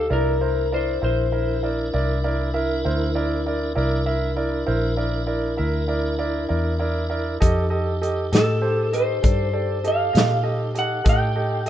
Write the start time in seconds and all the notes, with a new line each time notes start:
0.10 C2 D4 E4 A#4 D5
0.41 E4 A#4 C5
0.72 E4 A#4 C5 D5
1.02 A#1 E4 A#4 C5
1.32 E4 A#4 E5
1.63 E4 A#4 D5
1.94 C2 E4 A#4 D5
2.24 E4 A#4 D5
2.54 E4 A#4 E5
2.85 D2 E4 A#4 C5
3.15 E4 A#4 D5
3.46 E4 A#4 D5
3.75 C2 D4 E4 A#4 D5
4.06 E4 A#4 E5
4.36 E4 A#4 D5
4.67 A#1 E4 A#4 C5
4.97 E4 A#4 D5
5.27 E4 A#4 D5
5.57 D2 E4 A#4 E5
5.88 E4 A#4 D5
6.19 E4 A#4 D5
6.49 E2 E4 A#4 D5
6.79 E4 A#4 D5
7.10 E4 A#4 D5
7.40 F2 D#4 G4 A4 D#5, kick, closed hi-hat
7.70 G4 A4 D#5
8.02 G4 A4 D#5, closed hi-hat
8.32 A2 G4 A4 D#5, snare, closed hi-hat
8.61 G4 A4 C5
8.93 G4 A4 C5 D#5, closed hi-hat
9.22 G2 G4 A4 D5, kick, closed hi-hat
9.53 G4 A4 D5
9.84 G4 A4 D#5 F5, closed hi-hat
10.13 A#2 G4 A4 D#5, closed hi-hat
10.17 snare
10.43 G4 A4 D#5
10.74 G4 A4 D#5, closed hi-hat
10.79 F#5
11.04 A2 G4 A4 D#5, kick, closed hi-hat
11.09 G5
11.36 G4 A4 D#5
11.66 G4 A4 D#5, closed hi-hat